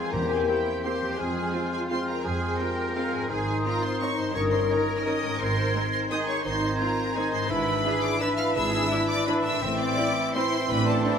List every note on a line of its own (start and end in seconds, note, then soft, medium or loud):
0.00 1.11 E2 medium
0.00 0.14 G#3 medium
0.00 1.04 C4 soft
0.00 1.15 C4 medium
0.00 0.12 F4 medium
0.00 0.13 G#4 medium
0.00 1.13 C5 soft
0.00 0.13 G#5 medium
0.04 1.16 G4 soft
0.09 1.18 A#4 soft
0.09 0.30 A#4 medium
0.13 0.42 E2 medium
0.13 0.63 E2 medium
0.13 0.47 A#3 medium
0.13 0.48 C4 medium
0.13 1.19 G4 medium
0.13 0.48 G4 medium
0.13 0.47 C5 medium
0.13 0.30 A#5 medium
0.13 0.46 G6 medium
0.30 0.48 G#4 medium
0.30 0.48 G#5 medium
0.47 0.83 A#3 medium
0.47 0.83 C4 medium
0.47 0.57 C4 medium
0.47 0.83 E4 medium
0.47 0.83 G4 medium
0.47 0.56 G4 soft
0.47 0.84 C5 medium
0.47 0.84 G5 medium
0.47 0.83 G6 medium
0.84 1.20 A#3 medium
0.84 1.18 C4 medium
0.84 0.92 C4 medium
0.84 1.19 G4 medium
0.84 0.92 G4 medium
0.84 1.18 C5 medium
0.84 1.18 C6 medium
0.84 1.18 G6 medium
1.01 3.22 F2 medium
1.05 3.15 C4 soft
1.10 3.26 F4 soft
1.14 3.24 C5 soft
1.18 1.48 F2 medium
1.18 1.89 G#3 medium
1.18 1.89 C4 medium
1.18 3.26 C4 medium
1.18 3.26 F4 medium
1.18 1.71 G#4 medium
1.18 1.54 G#4 medium
1.18 1.90 C5 medium
1.18 1.72 G#5 medium
1.18 1.89 F6 medium
1.54 1.62 C4 medium
1.54 2.25 F4 medium
1.54 1.62 F4 medium
1.72 1.79 G#4 medium
1.72 1.80 G#5 medium
1.90 2.23 G#3 medium
1.90 1.98 C4 medium
1.90 2.24 C4 medium
1.90 1.98 F4 medium
1.90 1.98 C5 medium
1.90 2.24 C5 medium
1.90 2.08 C6 medium
1.90 2.23 F6 medium
2.08 2.24 A#4 medium
2.08 2.24 A#5 medium
2.24 2.54 F2 medium
2.24 2.94 G#3 medium
2.24 2.94 C4 medium
2.24 2.59 G#4 medium
2.24 2.94 C5 medium
2.24 2.60 G#5 medium
2.24 2.93 F6 medium
2.59 2.68 C4 medium
2.59 2.68 F4 soft
2.59 2.95 G4 medium
2.59 3.30 A#4 medium
2.59 2.96 G5 medium
2.94 3.31 G#3 medium
2.94 3.31 C4 medium
2.94 3.04 C4 medium
2.94 3.13 F4 medium
2.94 3.04 F4 medium
2.94 3.29 C5 medium
2.94 3.13 F5 medium
2.94 3.29 F6 medium
3.12 4.27 G#2 medium
3.12 3.29 G#4 medium
3.12 3.28 G#5 medium
3.16 4.29 C4 soft
3.21 4.25 D#4 soft
3.25 4.34 C5 soft
3.25 4.08 D#6 medium
3.29 3.59 G#1 medium
3.29 4.34 D#3 medium
3.29 4.33 C4 medium
3.29 4.34 D#4 medium
3.29 5.36 D#4 medium
3.29 3.64 G#4 medium
3.29 4.37 C5 medium
3.29 3.64 G#5 medium
3.64 3.73 C4 soft
3.64 3.73 D#4 medium
3.64 4.00 F4 medium
3.64 3.83 A#4 medium
3.64 3.82 A#5 medium
3.83 4.01 C5 medium
3.83 4.01 C6 medium
4.00 4.09 C4 medium
4.00 4.35 D#4 medium
4.00 4.09 D#4 medium
4.00 4.18 C#5 medium
4.00 4.18 C#6 medium
4.17 5.32 G2 medium
4.17 4.34 C5 medium
4.17 4.35 C6 medium
4.22 5.34 C#4 soft
4.26 5.30 D#4 soft
4.30 5.39 A#4 soft
4.30 4.68 D#6 medium
4.34 4.64 G1 medium
4.34 4.69 D#3 medium
4.34 5.40 C#4 medium
4.34 4.68 D#4 medium
4.34 6.10 A#4 medium
4.34 4.52 C#5 medium
4.34 4.70 C#5 medium
4.34 4.42 C#6 loud
4.51 4.69 C5 medium
4.51 4.69 C6 medium
4.68 5.05 D#3 medium
4.68 4.78 C#4 medium
4.68 5.05 D#4 medium
4.68 4.78 D#4 medium
4.68 5.04 A#4 medium
4.68 5.05 C#5 medium
4.68 4.99 A#5 medium
4.68 5.04 D#6 medium
4.99 5.06 F6 medium
5.05 5.39 D#3 medium
5.05 5.14 C#4 medium
5.05 5.38 D#4 medium
5.05 5.14 D#4 medium
5.05 5.39 C#5 medium
5.05 5.39 D#5 medium
5.05 5.40 D#6 medium
5.05 5.39 D#6 medium
5.22 7.31 G#2 medium
5.26 7.45 C4 soft
5.31 7.47 D#4 soft
5.35 5.84 D#4 medium
5.35 9.25 G#4 medium
5.35 5.91 C5 medium
5.35 5.84 C5 medium
5.40 5.68 G#1 medium
5.40 5.84 D#3 medium
5.40 7.50 C4 medium
5.40 7.46 D#4 medium
5.40 5.91 C6 loud
5.40 6.09 G#6 medium
5.74 5.82 C4 medium
5.74 5.82 D#4 medium
5.92 6.10 C5 medium
5.92 6.00 C6 medium
6.10 6.42 D#3 medium
6.10 6.19 C4 medium
6.10 6.42 D#4 medium
6.10 6.19 D#4 medium
6.10 6.44 G#4 medium
6.10 6.42 C5 medium
6.10 6.28 D#5 medium
6.10 6.18 D#6 medium
6.10 6.43 G#6 medium
6.28 6.45 C#5 medium
6.28 6.44 C#6 medium
6.44 6.74 G#1 medium
6.44 7.14 D#3 medium
6.44 6.79 D#4 medium
6.44 7.14 D#4 medium
6.44 6.80 C5 medium
6.44 7.15 C5 medium
6.44 6.79 C6 loud
6.44 7.14 G#6 medium
6.79 6.88 C4 medium
6.79 6.88 D#4 medium
6.79 7.16 F4 medium
6.79 7.16 A#4 medium
6.79 7.15 A#5 medium
7.15 7.49 D#3 medium
7.15 7.24 C4 medium
7.15 7.49 D#4 medium
7.15 7.25 D#4 medium
7.15 7.33 G#4 medium
7.15 7.49 C5 medium
7.15 7.33 G#5 loud
7.15 7.49 G#6 medium
7.32 9.54 G#2 medium
7.32 7.50 C5 medium
7.32 7.49 C6 medium
7.37 9.57 D4 medium
7.41 9.52 E4 medium
7.46 9.61 B4 medium
7.46 8.03 B4 medium
7.46 8.03 B5 loud
7.50 7.79 G#1 medium
7.50 8.17 E3 medium
7.50 8.17 D4 medium
7.50 9.45 D4 medium
7.50 7.85 E4 medium
7.50 9.45 E4 medium
7.50 8.17 E5 medium
7.50 8.17 B5 medium
7.84 7.93 D4 medium
7.84 7.93 E4 medium
7.84 8.20 G#4 medium
8.02 8.21 D5 medium
8.02 8.21 D6 loud
8.21 8.55 E3 medium
8.21 8.54 D4 medium
8.21 8.29 D4 medium
8.21 8.29 E4 medium
8.21 8.55 B4 medium
8.21 8.55 E5 medium
8.21 8.39 E5 medium
8.21 8.54 B5 medium
8.21 8.28 E6 loud
8.38 8.55 F5 loud
8.38 8.45 F6 medium
8.54 8.85 G#1 medium
8.54 9.26 E3 medium
8.54 9.26 D4 medium
8.54 8.91 G#4 loud
8.54 9.08 E5 medium
8.54 9.26 E5 medium
8.54 9.25 B5 medium
8.54 9.08 E6 loud
8.90 8.99 D4 medium
8.90 9.26 E4 medium
8.90 8.99 E4 medium
9.09 9.27 D5 medium
9.09 9.27 D6 loud
9.27 9.61 E3 medium
9.27 9.35 D4 medium
9.27 9.63 D4 medium
9.27 9.61 D4 medium
9.27 9.35 E4 medium
9.27 9.45 B4 medium
9.27 9.61 E5 medium
9.27 9.34 B5 loud
9.27 9.61 B5 medium
9.44 11.19 A2 medium
9.44 9.78 E5 medium
9.44 9.78 E6 loud
9.48 11.19 C4 medium
9.53 11.19 E4 medium
9.58 9.97 C4 medium
9.58 10.35 C4 medium
9.58 11.19 C5 medium
9.58 10.34 C6 medium
9.62 9.92 A1 medium
9.62 10.34 E3 medium
9.62 11.19 C4 medium
9.62 11.19 E4 medium
9.62 10.34 E5 medium
9.78 10.35 D5 loud
9.78 10.34 D6 loud
9.97 10.06 C4 medium
9.97 10.70 E4 medium
9.97 10.06 E4 medium
10.35 11.19 E3 medium
10.35 11.19 C4 medium
10.35 10.43 C4 medium
10.35 10.43 E4 medium
10.35 10.70 C5 medium
10.35 11.19 E5 medium
10.35 10.70 C6 loud
10.35 11.19 C6 medium
10.70 11.00 A1 medium
10.70 11.19 D4 loud
10.70 10.88 B4 medium
10.70 10.88 B5 loud
10.88 11.19 A4 medium
10.88 11.19 A5 loud
11.06 11.14 C4 medium
11.06 11.14 E4 medium